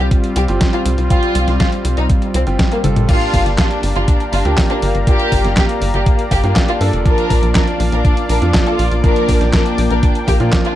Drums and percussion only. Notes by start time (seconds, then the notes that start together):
0.11 kick, closed hi-hat
0.24 closed hi-hat
0.36 closed hi-hat
0.48 closed hi-hat
0.61 kick, snare, closed hi-hat
0.73 closed hi-hat
0.86 closed hi-hat
0.98 closed hi-hat
1.10 kick, closed hi-hat
1.23 closed hi-hat
1.35 closed hi-hat
1.48 snare, closed hi-hat
1.60 kick, snare, closed hi-hat
1.72 closed hi-hat
1.85 closed hi-hat
1.97 closed hi-hat
2.10 kick, closed hi-hat
2.22 closed hi-hat
2.34 closed hi-hat
2.47 closed hi-hat
2.59 kick, snare, closed hi-hat
2.72 closed hi-hat
2.84 closed hi-hat, high tom
2.96 closed hi-hat, mid tom
3.09 kick, closed hi-hat, crash
3.21 closed hi-hat
3.34 kick, open hi-hat
3.46 closed hi-hat
3.58 kick, snare, clap, closed hi-hat
3.71 closed hi-hat
3.83 open hi-hat
3.96 closed hi-hat
4.08 kick, closed hi-hat
4.20 closed hi-hat
4.33 open hi-hat
4.45 closed hi-hat
4.58 kick, snare, clap, open hi-hat
4.70 closed hi-hat
4.82 open hi-hat
4.95 closed hi-hat
5.07 kick, closed hi-hat
5.20 closed hi-hat
5.32 kick, open hi-hat
5.44 snare, closed hi-hat
5.57 kick, snare, clap, closed hi-hat
5.69 closed hi-hat
5.82 open hi-hat
5.94 closed hi-hat
6.06 kick, closed hi-hat
6.19 closed hi-hat
6.31 kick, open hi-hat
6.44 closed hi-hat
6.56 kick, snare, clap, closed hi-hat
6.68 closed hi-hat
6.81 open hi-hat
6.93 closed hi-hat
7.06 kick, closed hi-hat
7.18 closed hi-hat
7.30 kick, open hi-hat
7.43 closed hi-hat
7.55 kick, snare, clap, closed hi-hat
7.68 closed hi-hat
7.80 open hi-hat
7.92 closed hi-hat
8.05 kick, closed hi-hat
8.17 closed hi-hat
8.29 open hi-hat
8.42 closed hi-hat
8.54 kick, snare, clap, open hi-hat
8.67 closed hi-hat
8.79 open hi-hat
8.92 closed hi-hat
9.04 kick, closed hi-hat
9.16 closed hi-hat
9.29 kick, open hi-hat
9.41 snare, closed hi-hat
9.53 kick, snare, clap, closed hi-hat
9.66 closed hi-hat
9.78 open hi-hat
9.91 closed hi-hat
10.03 kick, closed hi-hat
10.15 closed hi-hat
10.28 kick, open hi-hat
10.40 closed hi-hat
10.52 kick, snare, clap, closed hi-hat
10.65 closed hi-hat